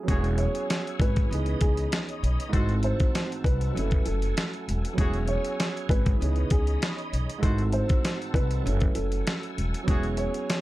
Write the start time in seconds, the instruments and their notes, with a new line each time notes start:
0.03 grand piano F#3 B3
0.07 upright bass E1, grand piano C#4 E4, trumpet section F#4 G#4 C#5, tonewheel organ C#5 F#5 G#5 E6, kick, closed hi-hat
0.11 grand piano G#4
0.24 closed hi-hat
0.38 upright piano C#5, closed hi-hat
0.55 closed hi-hat
0.70 snare, closed hi-hat
0.87 closed hi-hat
1.00 upright bass G#1, upright piano B4, kick, closed hi-hat
1.16 kick, closed hi-hat
1.26 grand piano E3 B3 C#4
1.30 upright bass C#2, grand piano D#4 G#4, tonewheel organ D#5 B5 D#6, closed hi-hat
1.46 closed hi-hat
1.61 upright bass C#2, upright piano G#4, kick, closed hi-hat
1.77 closed hi-hat
1.92 snare, closed hi-hat
2.09 closed hi-hat
2.23 upright bass B1, closed hi-hat
2.40 closed hi-hat
2.49 grand piano G#2 E3 A3, tonewheel organ C4 F#5 A5 E6
2.53 upright bass G#1, grand piano C4 D#4 F#4, trumpet section F#4 A4 C5, kick, closed hi-hat
2.69 closed hi-hat
2.83 upright piano C5, closed hi-hat
3.00 kick, closed hi-hat
3.15 snare, closed hi-hat
3.32 closed hi-hat
3.44 upright bass C2, upright piano B4, kick, closed hi-hat
3.61 closed hi-hat
3.71 grand piano F#3 A3 C#4, tonewheel organ A4 G#5
3.76 upright bass F#1, grand piano E4 A4, closed hi-hat
3.91 kick, closed hi-hat
4.05 upright bass F#1, upright piano A4, closed hi-hat
4.22 closed hi-hat
4.37 snare, closed hi-hat
4.53 closed hi-hat
4.68 upright bass E1, closed hi-hat
4.85 closed hi-hat
4.93 grand piano F#3 B3
4.97 upright bass E1, grand piano C#4 E4, trumpet section F#4 G#4 C#5, tonewheel organ C#5 E6, kick, closed hi-hat
5.01 grand piano G#4
5.13 closed hi-hat
5.28 upright piano C#5, closed hi-hat
5.44 closed hi-hat
5.60 snare, closed hi-hat
5.77 closed hi-hat
5.89 upright bass G#1, upright piano B4, kick, closed hi-hat
6.06 kick, closed hi-hat
6.15 grand piano E3 B3 C#4
6.20 upright bass C#2, grand piano D#4 G#4, tonewheel organ D#5 B5 D#6, closed hi-hat
6.36 closed hi-hat
6.50 upright bass C#2, upright piano G#4, kick, closed hi-hat
6.67 closed hi-hat
6.82 snare, closed hi-hat
6.98 closed hi-hat
7.13 upright bass B1, closed hi-hat
7.30 closed hi-hat
7.38 grand piano G#2 E3 A3, trumpet section F#4 A4 C5
7.43 upright bass G#1, tonewheel organ C4 F#5 A5 E6, grand piano C4 D#4 F#4, kick, closed hi-hat
7.58 closed hi-hat
7.72 upright piano C5, closed hi-hat
7.89 kick, closed hi-hat
8.05 snare, closed hi-hat
8.22 closed hi-hat
8.34 upright bass C2, upright piano B4, kick, closed hi-hat
8.51 closed hi-hat
8.61 grand piano F#3 A3 C#4
8.65 upright bass F#1, grand piano E4 A4, tonewheel organ A4 G#5 E6, closed hi-hat
8.80 kick, closed hi-hat
8.95 upright bass F#1, upright piano A4, closed hi-hat
9.12 closed hi-hat
9.27 snare, closed hi-hat
9.43 closed hi-hat
9.58 upright bass E1, closed hi-hat
9.74 closed hi-hat
9.83 grand piano F#3 B3
9.87 upright bass E1, grand piano C#4 E4, trumpet section F#4 G#4 C#5, tonewheel organ C#5 F#5 G#5 E6, kick, closed hi-hat
9.91 grand piano G#4
10.03 closed hi-hat
10.17 upright piano C#5, closed hi-hat
10.34 closed hi-hat
10.50 snare, closed hi-hat